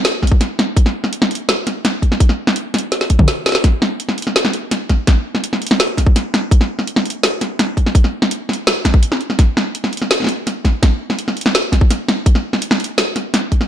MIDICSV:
0, 0, Header, 1, 2, 480
1, 0, Start_track
1, 0, Tempo, 359281
1, 1023, Time_signature, 4, 2, 24, 8
1, 18274, End_track
2, 0, Start_track
2, 0, Title_t, "Drums"
2, 65, Note_on_c, 9, 38, 112
2, 65, Note_on_c, 9, 42, 75
2, 198, Note_off_c, 9, 38, 0
2, 198, Note_off_c, 9, 42, 0
2, 301, Note_on_c, 9, 36, 58
2, 304, Note_on_c, 9, 40, 51
2, 364, Note_on_c, 9, 42, 63
2, 421, Note_off_c, 9, 36, 0
2, 421, Note_on_c, 9, 36, 106
2, 438, Note_off_c, 9, 40, 0
2, 498, Note_off_c, 9, 42, 0
2, 545, Note_on_c, 9, 40, 54
2, 545, Note_on_c, 9, 42, 78
2, 555, Note_off_c, 9, 36, 0
2, 678, Note_off_c, 9, 40, 0
2, 678, Note_off_c, 9, 42, 0
2, 787, Note_on_c, 9, 40, 75
2, 787, Note_on_c, 9, 42, 33
2, 921, Note_off_c, 9, 40, 0
2, 921, Note_off_c, 9, 42, 0
2, 1022, Note_on_c, 9, 36, 114
2, 1028, Note_on_c, 9, 42, 77
2, 1147, Note_on_c, 9, 40, 56
2, 1156, Note_off_c, 9, 36, 0
2, 1161, Note_off_c, 9, 42, 0
2, 1281, Note_off_c, 9, 40, 0
2, 1386, Note_on_c, 9, 40, 60
2, 1505, Note_on_c, 9, 42, 73
2, 1520, Note_off_c, 9, 40, 0
2, 1626, Note_on_c, 9, 40, 82
2, 1639, Note_off_c, 9, 42, 0
2, 1749, Note_on_c, 9, 42, 49
2, 1760, Note_off_c, 9, 40, 0
2, 1807, Note_off_c, 9, 42, 0
2, 1807, Note_on_c, 9, 42, 63
2, 1940, Note_off_c, 9, 42, 0
2, 1987, Note_on_c, 9, 38, 108
2, 1987, Note_on_c, 9, 40, 54
2, 1987, Note_on_c, 9, 42, 75
2, 2121, Note_off_c, 9, 38, 0
2, 2121, Note_off_c, 9, 40, 0
2, 2121, Note_off_c, 9, 42, 0
2, 2228, Note_on_c, 9, 40, 55
2, 2228, Note_on_c, 9, 42, 63
2, 2362, Note_off_c, 9, 40, 0
2, 2362, Note_off_c, 9, 42, 0
2, 2468, Note_on_c, 9, 40, 83
2, 2468, Note_on_c, 9, 42, 80
2, 2601, Note_off_c, 9, 40, 0
2, 2601, Note_off_c, 9, 42, 0
2, 2703, Note_on_c, 9, 36, 61
2, 2709, Note_on_c, 9, 42, 34
2, 2829, Note_on_c, 9, 40, 53
2, 2837, Note_off_c, 9, 36, 0
2, 2843, Note_off_c, 9, 42, 0
2, 2944, Note_on_c, 9, 36, 115
2, 2945, Note_on_c, 9, 42, 81
2, 2962, Note_off_c, 9, 40, 0
2, 3063, Note_on_c, 9, 40, 55
2, 3077, Note_off_c, 9, 36, 0
2, 3079, Note_off_c, 9, 42, 0
2, 3197, Note_off_c, 9, 40, 0
2, 3304, Note_on_c, 9, 40, 87
2, 3419, Note_on_c, 9, 42, 79
2, 3437, Note_off_c, 9, 40, 0
2, 3553, Note_off_c, 9, 42, 0
2, 3661, Note_on_c, 9, 40, 57
2, 3661, Note_on_c, 9, 42, 49
2, 3720, Note_off_c, 9, 42, 0
2, 3720, Note_on_c, 9, 42, 67
2, 3794, Note_off_c, 9, 40, 0
2, 3854, Note_off_c, 9, 42, 0
2, 3900, Note_on_c, 9, 38, 63
2, 3900, Note_on_c, 9, 42, 77
2, 4022, Note_off_c, 9, 38, 0
2, 4022, Note_on_c, 9, 38, 57
2, 4033, Note_off_c, 9, 42, 0
2, 4141, Note_on_c, 9, 42, 63
2, 4143, Note_on_c, 9, 36, 61
2, 4155, Note_off_c, 9, 38, 0
2, 4261, Note_on_c, 9, 47, 71
2, 4264, Note_off_c, 9, 36, 0
2, 4264, Note_on_c, 9, 36, 105
2, 4274, Note_off_c, 9, 42, 0
2, 4380, Note_on_c, 9, 38, 85
2, 4380, Note_on_c, 9, 42, 84
2, 4395, Note_off_c, 9, 47, 0
2, 4397, Note_off_c, 9, 36, 0
2, 4513, Note_off_c, 9, 38, 0
2, 4513, Note_off_c, 9, 42, 0
2, 4623, Note_on_c, 9, 38, 91
2, 4623, Note_on_c, 9, 42, 33
2, 4664, Note_off_c, 9, 38, 0
2, 4664, Note_on_c, 9, 38, 70
2, 4705, Note_off_c, 9, 38, 0
2, 4705, Note_on_c, 9, 38, 60
2, 4741, Note_off_c, 9, 38, 0
2, 4741, Note_on_c, 9, 38, 90
2, 4757, Note_off_c, 9, 42, 0
2, 4863, Note_on_c, 9, 36, 121
2, 4863, Note_on_c, 9, 40, 56
2, 4863, Note_on_c, 9, 42, 85
2, 4875, Note_off_c, 9, 38, 0
2, 4996, Note_off_c, 9, 40, 0
2, 4996, Note_off_c, 9, 42, 0
2, 4997, Note_off_c, 9, 36, 0
2, 5102, Note_on_c, 9, 40, 82
2, 5235, Note_off_c, 9, 40, 0
2, 5341, Note_on_c, 9, 42, 79
2, 5459, Note_on_c, 9, 40, 56
2, 5475, Note_off_c, 9, 42, 0
2, 5582, Note_on_c, 9, 42, 52
2, 5592, Note_off_c, 9, 40, 0
2, 5642, Note_off_c, 9, 42, 0
2, 5642, Note_on_c, 9, 42, 70
2, 5702, Note_on_c, 9, 40, 60
2, 5776, Note_off_c, 9, 42, 0
2, 5823, Note_on_c, 9, 38, 115
2, 5823, Note_on_c, 9, 42, 86
2, 5836, Note_off_c, 9, 40, 0
2, 5941, Note_on_c, 9, 40, 87
2, 5956, Note_off_c, 9, 38, 0
2, 5956, Note_off_c, 9, 42, 0
2, 6058, Note_on_c, 9, 42, 67
2, 6075, Note_off_c, 9, 40, 0
2, 6192, Note_off_c, 9, 42, 0
2, 6298, Note_on_c, 9, 40, 57
2, 6298, Note_on_c, 9, 42, 85
2, 6432, Note_off_c, 9, 40, 0
2, 6432, Note_off_c, 9, 42, 0
2, 6539, Note_on_c, 9, 40, 53
2, 6539, Note_on_c, 9, 42, 37
2, 6541, Note_on_c, 9, 36, 60
2, 6673, Note_off_c, 9, 40, 0
2, 6673, Note_off_c, 9, 42, 0
2, 6675, Note_off_c, 9, 36, 0
2, 6778, Note_on_c, 9, 40, 78
2, 6778, Note_on_c, 9, 42, 81
2, 6781, Note_on_c, 9, 36, 127
2, 6912, Note_off_c, 9, 40, 0
2, 6912, Note_off_c, 9, 42, 0
2, 6915, Note_off_c, 9, 36, 0
2, 7143, Note_on_c, 9, 40, 54
2, 7264, Note_on_c, 9, 42, 81
2, 7276, Note_off_c, 9, 40, 0
2, 7386, Note_on_c, 9, 40, 56
2, 7397, Note_off_c, 9, 42, 0
2, 7504, Note_on_c, 9, 42, 51
2, 7519, Note_off_c, 9, 40, 0
2, 7569, Note_off_c, 9, 42, 0
2, 7569, Note_on_c, 9, 42, 70
2, 7628, Note_on_c, 9, 40, 93
2, 7703, Note_off_c, 9, 42, 0
2, 7747, Note_on_c, 9, 38, 122
2, 7747, Note_on_c, 9, 42, 84
2, 7762, Note_off_c, 9, 40, 0
2, 7880, Note_off_c, 9, 38, 0
2, 7880, Note_off_c, 9, 42, 0
2, 7982, Note_on_c, 9, 36, 66
2, 7990, Note_on_c, 9, 40, 50
2, 7990, Note_on_c, 9, 42, 69
2, 8103, Note_off_c, 9, 36, 0
2, 8103, Note_on_c, 9, 36, 115
2, 8124, Note_off_c, 9, 40, 0
2, 8124, Note_off_c, 9, 42, 0
2, 8229, Note_on_c, 9, 40, 55
2, 8229, Note_on_c, 9, 42, 89
2, 8236, Note_off_c, 9, 36, 0
2, 8362, Note_off_c, 9, 40, 0
2, 8362, Note_off_c, 9, 42, 0
2, 8469, Note_on_c, 9, 40, 76
2, 8469, Note_on_c, 9, 42, 38
2, 8602, Note_off_c, 9, 40, 0
2, 8602, Note_off_c, 9, 42, 0
2, 8702, Note_on_c, 9, 36, 127
2, 8710, Note_on_c, 9, 42, 84
2, 8828, Note_on_c, 9, 40, 55
2, 8836, Note_off_c, 9, 36, 0
2, 8844, Note_off_c, 9, 42, 0
2, 8962, Note_off_c, 9, 40, 0
2, 9068, Note_on_c, 9, 40, 53
2, 9184, Note_on_c, 9, 42, 79
2, 9201, Note_off_c, 9, 40, 0
2, 9303, Note_on_c, 9, 40, 78
2, 9318, Note_off_c, 9, 42, 0
2, 9425, Note_on_c, 9, 42, 50
2, 9437, Note_off_c, 9, 40, 0
2, 9488, Note_off_c, 9, 42, 0
2, 9488, Note_on_c, 9, 42, 67
2, 9621, Note_off_c, 9, 42, 0
2, 9665, Note_on_c, 9, 38, 127
2, 9665, Note_on_c, 9, 40, 49
2, 9665, Note_on_c, 9, 42, 78
2, 9799, Note_off_c, 9, 38, 0
2, 9799, Note_off_c, 9, 40, 0
2, 9799, Note_off_c, 9, 42, 0
2, 9904, Note_on_c, 9, 40, 52
2, 9904, Note_on_c, 9, 42, 65
2, 10038, Note_off_c, 9, 40, 0
2, 10038, Note_off_c, 9, 42, 0
2, 10144, Note_on_c, 9, 40, 78
2, 10144, Note_on_c, 9, 42, 85
2, 10278, Note_off_c, 9, 40, 0
2, 10278, Note_off_c, 9, 42, 0
2, 10381, Note_on_c, 9, 36, 69
2, 10387, Note_on_c, 9, 42, 36
2, 10507, Note_on_c, 9, 40, 52
2, 10514, Note_off_c, 9, 36, 0
2, 10521, Note_off_c, 9, 42, 0
2, 10620, Note_on_c, 9, 36, 124
2, 10625, Note_on_c, 9, 42, 78
2, 10640, Note_off_c, 9, 40, 0
2, 10744, Note_on_c, 9, 40, 51
2, 10753, Note_off_c, 9, 36, 0
2, 10758, Note_off_c, 9, 42, 0
2, 10878, Note_off_c, 9, 40, 0
2, 10983, Note_on_c, 9, 40, 79
2, 11105, Note_on_c, 9, 42, 79
2, 11116, Note_off_c, 9, 40, 0
2, 11238, Note_off_c, 9, 42, 0
2, 11343, Note_on_c, 9, 40, 52
2, 11402, Note_on_c, 9, 42, 65
2, 11477, Note_off_c, 9, 40, 0
2, 11535, Note_off_c, 9, 42, 0
2, 11584, Note_on_c, 9, 38, 123
2, 11584, Note_on_c, 9, 40, 48
2, 11584, Note_on_c, 9, 42, 79
2, 11717, Note_off_c, 9, 38, 0
2, 11717, Note_off_c, 9, 40, 0
2, 11717, Note_off_c, 9, 42, 0
2, 11821, Note_on_c, 9, 36, 66
2, 11825, Note_on_c, 9, 40, 73
2, 11825, Note_on_c, 9, 42, 64
2, 11941, Note_off_c, 9, 36, 0
2, 11941, Note_on_c, 9, 36, 119
2, 11958, Note_off_c, 9, 40, 0
2, 11958, Note_off_c, 9, 42, 0
2, 12060, Note_on_c, 9, 42, 77
2, 12075, Note_off_c, 9, 36, 0
2, 12180, Note_on_c, 9, 40, 52
2, 12193, Note_off_c, 9, 42, 0
2, 12300, Note_on_c, 9, 42, 32
2, 12314, Note_off_c, 9, 40, 0
2, 12422, Note_on_c, 9, 40, 52
2, 12433, Note_off_c, 9, 42, 0
2, 12542, Note_off_c, 9, 40, 0
2, 12542, Note_on_c, 9, 36, 127
2, 12542, Note_on_c, 9, 40, 48
2, 12542, Note_on_c, 9, 42, 78
2, 12675, Note_off_c, 9, 40, 0
2, 12675, Note_off_c, 9, 42, 0
2, 12676, Note_off_c, 9, 36, 0
2, 12785, Note_on_c, 9, 40, 75
2, 12918, Note_off_c, 9, 40, 0
2, 13024, Note_on_c, 9, 42, 78
2, 13145, Note_on_c, 9, 40, 53
2, 13157, Note_off_c, 9, 42, 0
2, 13263, Note_on_c, 9, 42, 46
2, 13278, Note_off_c, 9, 40, 0
2, 13323, Note_off_c, 9, 42, 0
2, 13323, Note_on_c, 9, 42, 59
2, 13382, Note_on_c, 9, 40, 54
2, 13456, Note_off_c, 9, 42, 0
2, 13503, Note_on_c, 9, 38, 116
2, 13503, Note_on_c, 9, 42, 76
2, 13515, Note_off_c, 9, 40, 0
2, 13629, Note_on_c, 9, 40, 36
2, 13637, Note_off_c, 9, 38, 0
2, 13637, Note_off_c, 9, 42, 0
2, 13655, Note_off_c, 9, 40, 0
2, 13655, Note_on_c, 9, 40, 45
2, 13684, Note_off_c, 9, 40, 0
2, 13684, Note_on_c, 9, 40, 57
2, 13715, Note_off_c, 9, 40, 0
2, 13715, Note_on_c, 9, 40, 61
2, 13743, Note_on_c, 9, 42, 63
2, 13849, Note_off_c, 9, 40, 0
2, 13877, Note_off_c, 9, 42, 0
2, 13986, Note_on_c, 9, 40, 52
2, 13986, Note_on_c, 9, 42, 81
2, 14120, Note_off_c, 9, 40, 0
2, 14120, Note_off_c, 9, 42, 0
2, 14223, Note_on_c, 9, 36, 62
2, 14227, Note_on_c, 9, 40, 48
2, 14227, Note_on_c, 9, 42, 32
2, 14357, Note_off_c, 9, 36, 0
2, 14360, Note_off_c, 9, 40, 0
2, 14360, Note_off_c, 9, 42, 0
2, 14463, Note_on_c, 9, 36, 124
2, 14466, Note_on_c, 9, 40, 80
2, 14466, Note_on_c, 9, 42, 76
2, 14597, Note_off_c, 9, 36, 0
2, 14599, Note_off_c, 9, 40, 0
2, 14599, Note_off_c, 9, 42, 0
2, 14827, Note_on_c, 9, 40, 56
2, 14944, Note_on_c, 9, 42, 75
2, 14961, Note_off_c, 9, 40, 0
2, 15068, Note_on_c, 9, 40, 57
2, 15078, Note_off_c, 9, 42, 0
2, 15187, Note_on_c, 9, 42, 49
2, 15201, Note_off_c, 9, 40, 0
2, 15247, Note_off_c, 9, 42, 0
2, 15247, Note_on_c, 9, 42, 64
2, 15308, Note_on_c, 9, 40, 83
2, 15381, Note_off_c, 9, 42, 0
2, 15429, Note_on_c, 9, 38, 117
2, 15429, Note_on_c, 9, 42, 76
2, 15441, Note_off_c, 9, 40, 0
2, 15562, Note_off_c, 9, 38, 0
2, 15562, Note_off_c, 9, 42, 0
2, 15661, Note_on_c, 9, 36, 61
2, 15667, Note_on_c, 9, 40, 52
2, 15667, Note_on_c, 9, 42, 61
2, 15782, Note_off_c, 9, 36, 0
2, 15782, Note_on_c, 9, 36, 110
2, 15801, Note_off_c, 9, 40, 0
2, 15801, Note_off_c, 9, 42, 0
2, 15906, Note_on_c, 9, 40, 56
2, 15906, Note_on_c, 9, 42, 79
2, 15915, Note_off_c, 9, 36, 0
2, 16039, Note_off_c, 9, 40, 0
2, 16039, Note_off_c, 9, 42, 0
2, 16145, Note_on_c, 9, 40, 74
2, 16145, Note_on_c, 9, 42, 33
2, 16279, Note_off_c, 9, 40, 0
2, 16279, Note_off_c, 9, 42, 0
2, 16380, Note_on_c, 9, 36, 111
2, 16384, Note_on_c, 9, 42, 78
2, 16502, Note_on_c, 9, 40, 53
2, 16514, Note_off_c, 9, 36, 0
2, 16518, Note_off_c, 9, 42, 0
2, 16635, Note_off_c, 9, 40, 0
2, 16743, Note_on_c, 9, 40, 55
2, 16859, Note_on_c, 9, 42, 81
2, 16876, Note_off_c, 9, 40, 0
2, 16980, Note_on_c, 9, 40, 84
2, 16992, Note_off_c, 9, 42, 0
2, 17099, Note_on_c, 9, 42, 49
2, 17113, Note_off_c, 9, 40, 0
2, 17158, Note_off_c, 9, 42, 0
2, 17158, Note_on_c, 9, 42, 65
2, 17291, Note_off_c, 9, 42, 0
2, 17340, Note_on_c, 9, 38, 112
2, 17340, Note_on_c, 9, 40, 52
2, 17340, Note_on_c, 9, 42, 76
2, 17474, Note_off_c, 9, 38, 0
2, 17474, Note_off_c, 9, 40, 0
2, 17474, Note_off_c, 9, 42, 0
2, 17579, Note_on_c, 9, 40, 53
2, 17579, Note_on_c, 9, 42, 63
2, 17713, Note_off_c, 9, 40, 0
2, 17713, Note_off_c, 9, 42, 0
2, 17819, Note_on_c, 9, 40, 85
2, 17819, Note_on_c, 9, 42, 80
2, 17953, Note_off_c, 9, 40, 0
2, 17953, Note_off_c, 9, 42, 0
2, 18060, Note_on_c, 9, 36, 60
2, 18060, Note_on_c, 9, 42, 36
2, 18180, Note_on_c, 9, 40, 52
2, 18193, Note_off_c, 9, 36, 0
2, 18193, Note_off_c, 9, 42, 0
2, 18274, Note_off_c, 9, 40, 0
2, 18274, End_track
0, 0, End_of_file